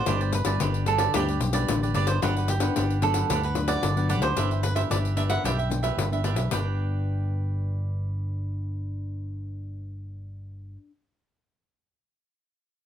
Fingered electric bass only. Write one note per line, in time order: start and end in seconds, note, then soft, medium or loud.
0.06 0.41 G1 medium
0.45 0.57 G1 medium
0.61 1.06 G1 medium
1.14 1.37 D2 loud
1.40 1.65 B1 medium
1.69 1.92 A1 medium
1.95 2.19 G1 medium
2.22 2.68 G1 medium
2.76 3.21 G1 medium
3.30 3.75 D2 medium
3.83 4.21 G1 loud
4.21 4.33 D2 medium
4.37 4.82 G1 medium
4.90 5.36 G1 medium
5.44 5.89 B1 medium
5.97 6.37 G1 medium
6.37 6.48 B1 medium
6.52 10.75 G1 medium